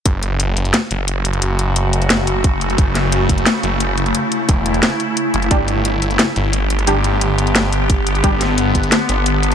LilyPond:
<<
  \new Staff \with { instrumentName = "Synth stab" } { \time 4/4 \key fis \phrygian \tempo 4 = 176 r1 | r1 | r1 | r1 |
<g d' g'>8 r2. r8 | <g d' g'>8 r2. r8 | <g d' g'>8 r2. r8 | }
  \new Staff \with { instrumentName = "Synth drone" } { \time 4/4 \key fis \phrygian << { fis'1~ | fis'1 | e'1~ | e'1 |
g'1~ | g'1 | a'1 | } \\ { <cis a>1~ | <cis a>1~ | <cis a>1~ | <cis a>1 |
<d b>1~ | <d b>1~ | <d b>1 | } >> }
  \new Staff \with { instrumentName = "Detuned saw bass" } { \clef bass \time 4/4 \key fis \phrygian fis,,4. fis,,8 r8 fis,,4. | fis,,2~ fis,,8 fis,,4. | fis,,4. fis,,8 r8 fis,,4. | r4 e,,4 r4. fis,,8 |
g,,4. g,,8 r8 g,,4. | g,,2~ g,,8 g,,4. | g,,4. g,,8 r8 g,,4. | }
  \new DrumStaff \with { instrumentName = "Drums" } \drummode { \time 4/4 <hh bd>8 hh8 hh8 hh16 hh16 <hh sn>8 hh8 hh8 hh16 hh16 | hh8 hh8 hh8 hh16 hh16 <hh sn>8 hh8 <hh bd>8 hh16 hh16 | <hh bd>8 <hh sn>8 hh8 <hh bd>16 hh16 <hh sn>8 hh8 hh8 hh16 hh16 | hh8 hh8 <hh bd>8 hh16 hh16 <hh sn>8 hh8 hh8 hh16 hh16 |
<hh bd>8 hh8 hh8 hh16 hh16 <hh sn>8 hh8 hh8 hh16 hh16 | hh8 hh8 hh8 hh16 hh16 <hh sn>8 hh8 <hh bd>8 hh16 hh16 | <hh bd>8 <hh sn>8 hh8 <hh bd>16 hh16 <hh sn>8 hh8 hh8 hh16 hh16 | }
>>